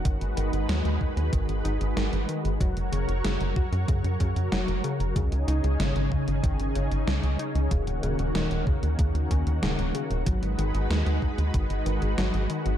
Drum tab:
HH |xxxxxx-xxxxxxxxx|xxxxxx-xxxxxxxxx|xxxxxx-xxxxxxxxx|xxxxxx-xxxxxxxxx|
SD |----o-------o---|----o-------o---|----o-------o---|----o-------o---|
BD |o-----o-o-------|o-----o-o-o-----|o-----o-o-------|o-----o-o-o-----|

HH |xxxxxx-xxxxxxxxx|
SD |----o-------o---|
BD |o-----o-o-------|